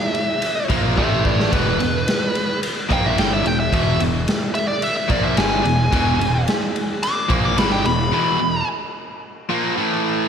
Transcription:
Already playing: lead electric guitar E5
0.15 ride
0.42 ride
0.69 picked electric bass A#1, overdriven electric guitar A#2 F3 A#3, kick, ride
0.96 picked electric bass A1, overdriven electric guitar A2 E3 A3, lead electric guitar G4 E5, kick
1.25 lead electric guitar B4 D5, kick
1.40 snare
1.52 picked electric bass E1, overdriven electric guitar E2 B2 E3, lead electric guitar B4, kick, ride
1.80 picked electric bass E1, overdriven electric guitar E2 B2, ride
2.08 snare, ride
2.35 ride
2.63 ride
2.89 picked electric bass A#1, overdriven electric guitar A#2 F3 A#3, lead electric guitar G5, kick, ride
3.06 lead electric guitar E5
3.16 picked electric bass G1, overdriven electric guitar G2 D3 G3, lead electric guitar G5, snare, ride
3.34 lead electric guitar E5
3.45 picked electric bass E1, overdriven electric guitar E2 B2, lead electric guitar G5, ride
3.60 lead electric guitar E5
3.72 picked electric bass E1, overdriven electric guitar E2 B2 E3, lead electric guitar E5, kick, ride
4.00 picked electric bass E1, overdriven electric guitar E2 B2, ride
4.28 snare, ride
4.55 lead electric guitar E5, ride
4.68 lead electric guitar D5
4.82 lead electric guitar E5, ride
4.97 lead electric guitar E5
5.08 picked electric bass A#1, overdriven electric guitar A#2 F3 A#3, lead electric guitar D5, kick, ride
5.25 lead electric guitar E5
5.36 picked electric bass G1, overdriven electric guitar G2 D3 G3, lead electric guitar G#5, snare, ride
5.64 picked electric bass E1, overdriven electric guitar E2 B2, ride
5.91 picked electric bass E1, overdriven electric guitar E2 B2 E3, kick, ride
6.20 picked electric bass E1, overdriven electric guitar E2 B2, ride
6.48 snare, ride
6.76 ride
7.03 lead electric guitar D6, ride
7.29 picked electric bass A#1, overdriven electric guitar A#2 F3 A#3, kick, ride
7.45 lead electric guitar D6
7.57 picked electric bass G1, overdriven electric guitar G2 D3 G3, lead electric guitar B5, snare, ride
7.72 lead electric guitar G5
7.85 picked electric bass E1, overdriven electric guitar E2 B2, lead electric guitar B5, ride
8.11 overdriven electric guitar E2 B2 E3, lead electric guitar B5
8.39 overdriven electric guitar E2 B2
9.49 overdriven electric guitar A#2 F3 A#3
9.76 overdriven electric guitar A2 E3 A3

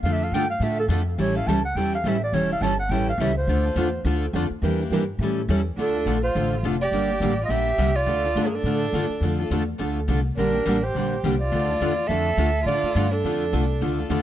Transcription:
0.03 upright bass F2, steel-string acoustic guitar D3 A3 D4 F4 A4, clarinet F5
0.12 clarinet E5
0.21 steel-string acoustic guitar D4 F4 A4, clarinet F5
0.31 upright bass G2, steel-string acoustic guitar D3 A3 D4 F4 A4, clarinet G5
0.50 clarinet F5
0.60 upright bass A2, steel-string acoustic guitar D3 A3 D4 F4 A4, clarinet E5
0.79 clarinet A4
0.88 upright bass F2, steel-string acoustic guitar D3 A3 D4 F4 A4
1.18 upright bass A1, steel-string acoustic guitar E3 G3 C#4 E4 A4, clarinet C#5
1.35 steel-string acoustic guitar C#4 E4 A4, clarinet F5
1.47 upright bass C#2, steel-string acoustic guitar E3 G3 C#4 E4 A4, clarinet A5
1.65 clarinet F#5
1.75 upright bass E2, steel-string acoustic guitar E3 G3 C#4 E4 A4, clarinet G5
1.95 clarinet F5
2.04 upright bass A1, steel-string acoustic guitar E3 G3 C#4 E4 A4, clarinet E5
2.24 clarinet D5
2.32 upright bass E1, steel-string acoustic guitar E3 G3 C#4 E4 A4, clarinet C#5
2.50 steel-string acoustic guitar C#4 E4 A4, clarinet F5
2.61 upright bass G1, steel-string acoustic guitar E3 G3 C#4 E4 A4, clarinet A5
2.79 clarinet F#5
2.89 upright bass A1, steel-string acoustic guitar E3 G3 C#4 E4 A4, clarinet G5
3.09 clarinet F5
3.18 upright bass C#2, steel-string acoustic guitar E3 G3 C#4 E4 A4, clarinet E5
3.37 clarinet C5
3.47 upright bass D2, steel-string acoustic guitar D3 A3 D4 F4 A4
3.66 steel-string acoustic guitar D4 F4 A4
3.76 upright bass E2, steel-string acoustic guitar D3 A3 D4 F4 A4
4.05 upright bass D2, steel-string acoustic guitar D3 A3 D4 F4 A4
4.33 upright bass F2, steel-string acoustic guitar D3 A3 D4 F4 A4
4.50 muted upright bass stroke
4.62 upright bass E2, steel-string acoustic guitar E3 G3 A#3 D4 E4 G4 A#4
4.81 steel-string acoustic guitar A#3 D4 G4
4.91 upright bass G2, steel-string acoustic guitar E3 G3 A#3 D4 E4 G4 A#4
5.19 upright bass A2, steel-string acoustic guitar E3 G3
5.23 steel-string acoustic guitar C#4 E4 A4
5.49 upright bass E2, steel-string acoustic guitar E3 G3 C#4 E4 A4
5.77 upright bass D2, steel-string acoustic guitar D3 A3 D4 F4 A4, violin D4, clarinet A4
5.94 steel-string acoustic guitar D4 F4 A4
6.06 upright bass A#1, steel-string acoustic guitar D3 A3 D4 F4 A4
6.22 violin F4, clarinet C5
6.35 upright bass A1, steel-string acoustic guitar D3 A3 D4 F4 A4
6.63 upright bass F1, steel-string acoustic guitar D3 A3 D4 F4 A4
6.81 violin G4, clarinet D5
6.92 upright bass G1, steel-string acoustic guitar D3 G3 A#3 D4 G4
7.10 steel-string acoustic guitar A#3 D4 G4
7.20 upright bass A1, steel-string acoustic guitar D3 G3 A#3 D4 G4
7.43 violin F4, clarinet D#5
7.49 upright bass A#1, steel-string acoustic guitar D3 G3 A#3 D4 G4, violin G4, clarinet E5
7.78 upright bass C2, steel-string acoustic guitar D3 G3 A#3 D4 G4
7.95 violin F4, clarinet D5
8.06 upright bass D2, steel-string acoustic guitar D3 A3 D4 F4 A4
8.24 steel-string acoustic guitar D4 F4 A4
8.36 upright bass G2, steel-string acoustic guitar D3 A3 D4 F4 A4
8.45 violin A#3, clarinet G#4
8.54 violin D4, clarinet A4
8.63 upright bass A2, steel-string acoustic guitar D3 A3 D4 F4 A4
8.93 upright bass G2, steel-string acoustic guitar D3 A3 D4 F4 A4
9.10 muted upright bass stroke
9.21 upright bass F2, steel-string acoustic guitar D3 A3 D4 F4 A4
9.39 steel-string acoustic guitar D4 F4 A4
9.50 upright bass E2, steel-string acoustic guitar D3 A3 D4 F4 A4
9.78 upright bass D2, steel-string acoustic guitar D3 A3 D4 F4 A4
10.08 upright bass C2, steel-string acoustic guitar D3 A3 D4 F4 A4
10.37 upright bass A#1, steel-string acoustic guitar D3 G3 A#3 D4 G4, violin D4, clarinet A#4
10.54 steel-string acoustic guitar A#3 D4 G4
10.65 upright bass A1, steel-string acoustic guitar D3 G3 A#3 D4 G4
10.83 violin G4, clarinet C5
10.95 upright bass A#1, steel-string acoustic guitar D3 G3 A#3 D4 G4
11.24 upright bass C2, steel-string acoustic guitar D3 G3 A#3 D4 G4
11.39 violin F4, clarinet D5
11.52 upright bass D2, steel-string acoustic guitar D3 A3 D4 F4 A4
11.70 steel-string acoustic guitar D4 F4 A4
11.81 upright bass E2, steel-string acoustic guitar D3 A3 D4 F4 A4
12.07 upright bass F2, steel-string acoustic guitar D3 A3 A4, violin A4, clarinet E5
12.11 steel-string acoustic guitar D4 F4
12.37 upright bass D2, steel-string acoustic guitar D3 A3 D4 F4 A4
12.64 upright bass A2, steel-string acoustic guitar D3 A3 D4 A4, violin F4, clarinet D5
12.68 steel-string acoustic guitar F4
12.83 steel-string acoustic guitar D4 F4 A4, muted upright bass stroke
12.95 upright bass G2, steel-string acoustic guitar D3 A3 D4 F4 A4
13.11 violin D4, clarinet A4
13.24 upright bass F2, steel-string acoustic guitar D3 A3 D4 F4 A4
13.53 upright bass C2, steel-string acoustic guitar D3 A3 D4 F4 A4
13.81 upright bass D2, steel-string acoustic guitar D3 A3 D4 F4 A4
13.98 steel-string acoustic guitar D4 F4 A4
14.10 upright bass E2, steel-string acoustic guitar D3 A3 D4 F4 A4

